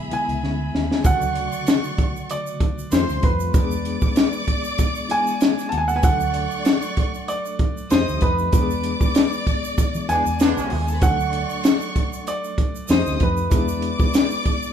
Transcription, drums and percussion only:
0.11 closed hi-hat
0.29 closed hi-hat
0.44 snare
0.75 snare
0.91 snare
1.04 kick, closed hi-hat, shaker
1.22 shaker
1.35 closed hi-hat
1.52 shaker
1.67 snare, closed hi-hat, shaker
1.84 shaker
1.98 kick, closed hi-hat
2.16 shaker
2.30 closed hi-hat, shaker
2.47 shaker
2.60 kick, closed hi-hat
2.79 shaker
2.92 snare, closed hi-hat, shaker
3.09 snare, shaker
3.23 kick, closed hi-hat
3.40 shaker
3.54 kick, closed hi-hat, shaker
3.71 shaker
3.85 closed hi-hat
4.01 kick, shaker
4.16 snare, closed hi-hat, shaker
4.32 shaker
4.47 kick, closed hi-hat
4.64 shaker
4.78 kick, closed hi-hat, shaker
4.95 shaker
5.10 closed hi-hat
5.27 shaker
5.41 snare, closed hi-hat, shaker
5.59 snare, shaker
5.72 closed hi-hat
5.89 shaker
6.03 kick, closed hi-hat, shaker
6.20 shaker
6.34 closed hi-hat
6.51 shaker
6.65 snare, closed hi-hat, shaker
6.82 shaker
6.97 kick, closed hi-hat
7.15 shaker
7.28 closed hi-hat, shaker
7.46 shaker
7.59 kick, closed hi-hat
7.77 shaker
7.90 snare, closed hi-hat, shaker
8.09 shaker
8.21 kick, closed hi-hat
8.39 shaker
8.52 kick, closed hi-hat, shaker
8.70 shaker
8.83 closed hi-hat
9.01 kick, shaker
9.15 snare, closed hi-hat, shaker
9.33 shaker
9.47 kick, closed hi-hat
9.64 shaker
9.78 kick, closed hi-hat, shaker
9.95 shaker
10.09 closed hi-hat, shaker
10.26 shaker
10.39 snare, closed hi-hat, shaker
10.58 snare, shaker
10.70 open hi-hat
10.88 shaker
11.02 kick, closed hi-hat, shaker
11.20 shaker
11.33 closed hi-hat
11.50 shaker
11.64 snare, closed hi-hat, shaker
11.81 shaker
11.96 kick, closed hi-hat
12.13 shaker
12.27 closed hi-hat, shaker
12.44 shaker
12.58 kick, closed hi-hat
12.76 shaker
12.88 snare, closed hi-hat, shaker
13.06 snare, shaker
13.20 kick, closed hi-hat
13.37 shaker
13.51 kick, closed hi-hat, shaker
13.68 shaker
13.82 closed hi-hat
13.99 kick, shaker
14.14 snare, closed hi-hat, shaker
14.31 shaker
14.45 kick, closed hi-hat
14.63 shaker

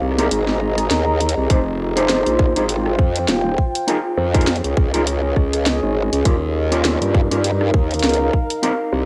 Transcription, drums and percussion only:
0.12 cross-stick
0.18 cross-stick, closed hi-hat
0.31 closed hi-hat
0.48 snare
0.78 cross-stick, closed hi-hat
0.91 snare, closed hi-hat
1.21 closed hi-hat
1.29 closed hi-hat
1.50 kick, closed hi-hat
1.97 closed hi-hat
2.10 snare, closed hi-hat
2.26 closed hi-hat
2.39 kick, cross-stick
2.56 closed hi-hat
2.69 closed hi-hat
2.86 cross-stick
2.99 kick
3.16 closed hi-hat
3.28 snare, closed hi-hat
3.58 kick
3.75 closed hi-hat
3.88 closed hi-hat
4.34 kick, closed hi-hat
4.41 closed hi-hat
4.47 snare, closed hi-hat
4.56 closed hi-hat
4.64 closed hi-hat
4.77 kick
4.94 closed hi-hat
5.07 closed hi-hat
5.36 kick, cross-stick
5.53 cross-stick, closed hi-hat
5.66 snare, closed hi-hat
6.13 closed hi-hat
6.25 kick, closed hi-hat
6.72 closed hi-hat
6.85 snare, closed hi-hat
7.02 closed hi-hat
7.14 kick, cross-stick
7.31 closed hi-hat
7.44 closed hi-hat
7.61 cross-stick
7.74 kick
7.91 closed hi-hat
7.94 closed hi-hat
7.99 closed hi-hat
8.04 snare, closed hi-hat
8.09 closed hi-hat
8.14 closed hi-hat
8.33 kick
8.50 closed hi-hat
8.63 closed hi-hat

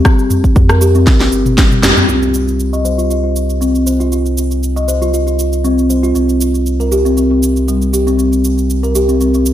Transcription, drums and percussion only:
0.05 kick, cross-stick, shaker
0.19 shaker
0.30 mid tom, shaker
0.44 kick, shaker
0.56 kick, shaker
0.69 cross-stick, shaker
0.81 shaker
0.95 shaker
1.07 kick, snare, shaker
1.20 snare, shaker
1.32 shaker
1.46 mid tom, shaker
1.58 kick, snare, shaker
1.71 mid tom, shaker
1.83 snare, mid tom, shaker
1.97 mid tom, shaker
2.09 shaker
2.22 shaker
2.34 shaker
2.48 shaker
2.60 shaker
2.73 shaker
2.85 shaker
2.99 shaker
3.11 shaker
3.36 shaker
3.50 shaker
3.62 shaker
3.75 shaker
3.87 shaker
4.00 shaker
4.12 shaker
4.26 shaker
4.38 shaker
4.51 shaker
4.63 shaker
4.77 shaker
4.88 shaker
5.02 shaker
5.14 shaker
5.27 shaker
5.39 shaker
5.53 shaker
5.65 shaker
5.78 shaker
5.90 shaker
6.04 shaker
6.15 shaker
6.29 shaker
6.41 shaker
6.55 shaker
6.66 shaker
6.80 shaker
6.92 shaker
7.06 shaker
7.17 shaker
7.43 shaker
7.56 shaker
7.68 shaker
7.82 shaker
7.94 shaker
8.07 shaker
8.19 shaker
8.33 shaker
8.44 shaker
8.58 shaker
8.70 shaker
8.84 shaker
8.95 shaker
9.09 shaker
9.21 shaker
9.34 shaker
9.46 shaker

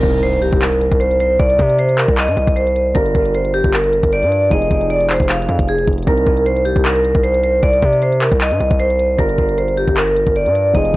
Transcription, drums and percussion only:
0.03 kick
0.14 closed hi-hat
0.23 closed hi-hat
0.33 closed hi-hat
0.42 closed hi-hat
0.53 kick
0.62 clap, closed hi-hat
0.72 closed hi-hat
0.81 closed hi-hat
0.92 kick, closed hi-hat
1.01 closed hi-hat
1.11 closed hi-hat
1.20 closed hi-hat
1.40 kick, closed hi-hat
1.50 closed hi-hat
1.59 kick
1.69 closed hi-hat
1.79 closed hi-hat
1.89 closed hi-hat
1.98 clap, closed hi-hat
2.08 kick
2.17 clap, closed hi-hat
2.28 closed hi-hat
2.37 closed hi-hat
2.47 kick, closed hi-hat
2.57 closed hi-hat
2.67 closed hi-hat
2.76 closed hi-hat
2.95 kick, closed hi-hat
3.06 closed hi-hat
3.15 kick
3.25 closed hi-hat
3.34 closed hi-hat
3.45 closed hi-hat
3.54 closed hi-hat
3.64 kick
3.74 clap, closed hi-hat
3.84 closed hi-hat
3.93 closed hi-hat
4.03 kick, closed hi-hat
4.12 closed hi-hat
4.23 closed hi-hat
4.32 closed hi-hat
4.51 kick, closed hi-hat
4.62 closed hi-hat
4.71 kick
4.81 closed hi-hat
4.90 closed hi-hat
5.01 closed hi-hat
5.10 clap, closed hi-hat, open hi-hat
5.16 kick, closed hi-hat
5.23 closed hi-hat
5.29 clap, closed hi-hat
5.36 closed hi-hat
5.42 closed hi-hat
5.49 closed hi-hat
5.59 kick, closed hi-hat
5.68 closed hi-hat
5.79 closed hi-hat
5.88 kick, closed hi-hat
5.93 closed hi-hat
5.98 closed hi-hat
6.03 closed hi-hat
6.07 kick, closed hi-hat
6.17 closed hi-hat
6.27 kick
6.37 closed hi-hat
6.46 closed hi-hat
6.56 closed hi-hat
6.66 closed hi-hat
6.76 kick
6.85 clap, closed hi-hat
6.95 closed hi-hat
7.04 closed hi-hat
7.15 kick, closed hi-hat
7.24 closed hi-hat
7.34 closed hi-hat
7.43 closed hi-hat
7.63 kick, closed hi-hat
7.73 closed hi-hat
7.82 kick
7.93 closed hi-hat
8.02 closed hi-hat
8.12 closed hi-hat
8.21 clap, closed hi-hat
8.32 kick
8.41 clap, closed hi-hat
8.51 closed hi-hat
8.60 closed hi-hat
8.71 kick, closed hi-hat
8.80 closed hi-hat
8.90 closed hi-hat
8.99 closed hi-hat
9.19 kick, closed hi-hat
9.29 closed hi-hat
9.38 kick
9.49 closed hi-hat
9.58 closed hi-hat
9.68 closed hi-hat
9.77 closed hi-hat
9.88 kick
9.97 clap, closed hi-hat
10.07 closed hi-hat
10.16 closed hi-hat
10.27 kick, closed hi-hat
10.36 closed hi-hat
10.46 closed hi-hat
10.55 closed hi-hat
10.75 kick, closed hi-hat
10.85 closed hi-hat

